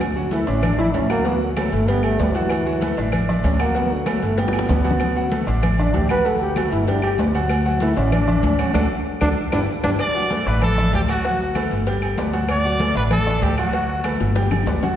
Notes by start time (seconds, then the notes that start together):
Already playing: D2
0.00 cowbell, high conga, low agogo, claves, maracas
0.16 F#3 F#4 F#5, high conga, maracas
0.31 A3 E4 A4 B4, cowbell, high conga, low timbale, low agogo, maracas
0.47 A1 C#4 D4 D5 E5, cowbell, maracas
0.63 D4, cowbell, high conga, low conga, low agogo, claves, maracas
0.78 D4 E4 D5 E5, high conga, low conga, maracas
0.94 D2 C#4, cowbell, high conga, low timbale, low agogo, maracas
1.10 F#3 A#3 F#4 F#5, cowbell, high conga, low agogo, claves, maracas
1.25 F#3 B3 F#4 F#5, cowbell, high conga, maracas
1.41 D3, maracas
1.56 F#3 A3 A4 B4, cowbell, high conga, low timbale, low agogo, claves, maracas
1.72 G1 A3, cowbell, high conga, maracas
1.88 G3 B3 G4 G5, cowbell, high conga, low agogo, maracas
2.03 A3, high conga, low agogo, claves, maracas
2.19 D2 G3 B3 B4 D5, cowbell, high conga, low timbale, maracas
2.34 E3 F#3 F#4 F#5, cowbell, high conga, low agogo, maracas
2.50 cowbell, high conga, low agogo, claves, maracas
2.66 F#3 F#4 F#5, high conga, maracas
2.81 A3 A4 B4, cowbell, high conga, low timbale, low agogo, maracas
2.97 A1 D4 D5 E5, cowbell, maracas
3.12 cowbell, high conga, low conga, low agogo, claves, maracas
3.29 D4 D5 E5, high conga, low conga, maracas
3.43 D2 C#4, cowbell, high conga, low timbale, low agogo, maracas
3.59 F#3 A#3 F#4 F#5, cowbell, low agogo, claves, maracas
3.75 F#3 B3 F#4 F#5, cowbell, high conga, maracas
3.91 D3, high conga, maracas
4.06 F#3 A3 A4 B4, cowbell, high conga, low timbale, low agogo, claves, maracas
4.21 G1 A3, cowbell, high conga, maracas
4.37 G3 B3 G4 G5, cowbell, high bongo, high conga, low agogo, maracas
4.48 high bongo
4.53 high conga, low agogo, claves, maracas
4.59 high bongo
4.68 D2 B3 B4 D5, cowbell, low bongo, high conga, low timbale, maracas
4.84 F#3 F#4 F#5, cowbell, low agogo, maracas
4.91 low bongo
5.00 cowbell, high conga, low agogo, claves, maracas
5.16 F#3 F#4 F#5, high conga, maracas
5.31 A3 A4 B4, cowbell, high conga, low timbale, low agogo, maracas
5.47 A1 D4 D5 E5, cowbell, maracas
5.62 cowbell, high conga, low conga, low agogo, claves, maracas
5.78 D4 D5 E5, high conga, low conga, maracas
5.94 D2 G4, cowbell, high conga, low timbale, low agogo, maracas
6.09 F#3 F#4 B4 F#5, cowbell, high conga, low agogo, claves, maracas
6.24 F#3 F#4 A4 F#5, cowbell, high conga, maracas
6.40 G4, high conga, maracas
6.56 A3 F#4 A4 B4, cowbell, high conga, low timbale, low agogo, claves, maracas
6.71 G1 E4, cowbell, high conga, maracas
6.87 G3 D4 G4 G5, cowbell, high conga, low agogo, maracas
7.02 G4, high conga, low agogo, claves, maracas
7.18 D2 B3 B4 D5, cowbell, high conga, low timbale, maracas
7.34 F#3 F#4 F#5, cowbell, low agogo, maracas
7.49 cowbell, high conga, low agogo, claves, maracas
7.65 F#3 F#4 F#5, high conga, maracas
7.80 A3 E4 A4 B4, cowbell, high conga, low timbale, low agogo, maracas
7.96 A1 C#4 D4 D5 E5, cowbell, maracas
8.12 D4, cowbell, high conga, low conga, low agogo, claves, maracas
8.27 D4 D5 E5, high conga, low conga, maracas
8.43 D2, cowbell, high conga, low timbale, low agogo, maracas
8.58 F#3 C#4 F#4 F#5, cowbell, high conga, low agogo, claves, maracas
8.74 D2 D4 F#4 A4, cowbell, high conga, high timbale, claves, maracas
9.21 D2 D4 F#4 A4, cowbell, high conga, high timbale, claves, maracas
9.52 G1 D4 E4 G4 B4, cowbell, high conga, high timbale, claves, maracas
9.83 G1 D4 E4 G4 B4, cowbell, high conga, high timbale, claves, maracas
9.99 D5, cowbell, high conga, low agogo, claves, maracas
10.15 F#3 F#4 F#5, high conga, maracas
10.30 A3 A4 B4, cowbell, high conga, low timbale, low agogo, maracas
10.46 A1 D4 B4 D5 E5, cowbell, maracas
10.61 A4, cowbell, high conga, low conga, low agogo, claves, maracas
10.78 D4 D5 E5, high conga, low conga, maracas
10.93 D2 G4, cowbell, high conga, low timbale, low agogo, maracas
11.08 F#3 F#4 F#5, cowbell, low agogo, claves, maracas
11.24 F#3 F#4 F#5, cowbell, high conga, maracas
11.40 high conga, maracas
11.55 A3 A4 B4, cowbell, high conga, low timbale, low agogo, claves, maracas
11.71 G1, cowbell, high conga, maracas
11.86 G3 G4 G5, cowbell, high conga, low agogo, maracas
12.02 high conga, low agogo, claves, maracas
12.17 D2 B3 B4 D5, cowbell, high conga, low timbale, maracas
12.33 F#3 F#4 F#5, cowbell, high conga, low agogo, maracas
12.49 D5, cowbell, high conga, low agogo, claves, maracas
12.64 F#3 F#4 F#5, high conga, maracas
12.80 A3 A4 B4, cowbell, high conga, low timbale, low agogo, maracas
12.95 A1 D4 B4 D5 E5, cowbell, maracas
13.10 A4, cowbell, high conga, low conga, low agogo, claves, maracas
13.26 D4 D5 E5, high conga, maracas
13.42 D2 G4, cowbell, high conga, low timbale, low agogo, maracas
13.57 F#3 F#4 F#5, cowbell, low agogo, claves, maracas
13.73 F#3 F#4 F#5, cowbell, maracas
13.89 high conga, maracas
14.04 A3 A4 B4, cowbell, high conga, low timbale, low agogo, claves, maracas
14.20 G1, cowbell, high bongo, high conga, maracas
14.35 G3 G4 G5, cowbell, high bongo, high conga, low agogo, maracas
14.51 low bongo, high conga, low agogo, claves, maracas
14.66 D2 B3 B4 D5, cowbell, high conga, low timbale, maracas
14.82 F#3 F#4 F#5, cowbell, low bongo, high conga, low agogo, maracas